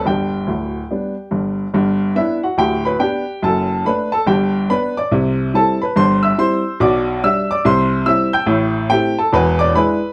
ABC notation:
X:1
M:4/4
L:1/8
Q:"Swing" 1/4=142
K:G
V:1 name="Upright piano"
[Gg]6- [Gg] z | z2 [Ee] [Ff] [Gg] [Bb] [Gg]2 | [Aa]2 [Bb] [Aa] [Gg]2 [Bb] [dd'] | z2 [Aa] [Bb] [cc'] [ee'] [cc']2 |
[dd']2 [ee'] [dd'] [cc']2 [ee'] [gg'] | [K:Am] z2 [Gg] [Aa] [Bb] [dd'] [Bb]2 |]
V:2 name="Upright piano" clef=bass
[G,,,G,,]2 [D,,,D,,]2 [G,B,D]2 [G,,,G,,]2 | [G,,,G,,]2 [B,D]2 [D,,,D,,]2 [B,D]2 | [F,,,F,,]2 [A,D]2 [G,,,G,,]2 [B,D]2 | [C,,C,]2 [G,CE]2 [G,,,G,,]2 [G,CE]2 |
[B,,,B,,]2 [G,D]2 [C,,C,]2 [G,CE]2 | [K:Am] [A,,,A,,]2 [A,CE]2 [E,,,E,,]2 [^G,DE]2 |]